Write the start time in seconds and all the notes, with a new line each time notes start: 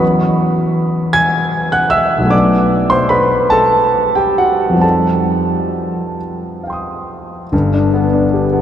Already playing: E2 F#3 B3 C#4 F#4
1.13 G#5 G#6
1.72 F#5 F#6
1.90 E5 E6
2.18 B1 F#3
2.24 A3 B3
2.29 D4 D5 D6
2.90 C5 C6
3.09 B4 B5
3.50 A4 A5
4.15 G4 G5
4.38 F#4 F#5
4.69 F2 F3
4.76 G3 C4
4.81 D#4 A4 A5
6.64 F5 G5
6.70 C6 D#6
7.52 G1 G2
7.74 D4
7.94 B3
8.13 D4
8.33 G4
8.53 B3